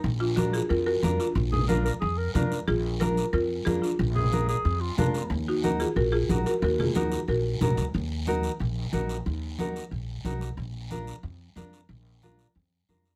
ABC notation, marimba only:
X:1
M:4/4
L:1/8
Q:1/4=182
K:Ebm
V:1 name="Marimba"
z [=DF] [DG] [FA] [FB] [GB]2 [DF]- | [=DF]4- [DF] z3 | [FA]2 [FB]2 [FB]2 [FA] [=DF]- | [=DF]4- [DF] z3 |
z [EG]2 [FA] [GB] [FA]2 [GB] | [GB] [FA] [EG]2 [GB]3 z | z8 | z8 |
z8 | z8 |]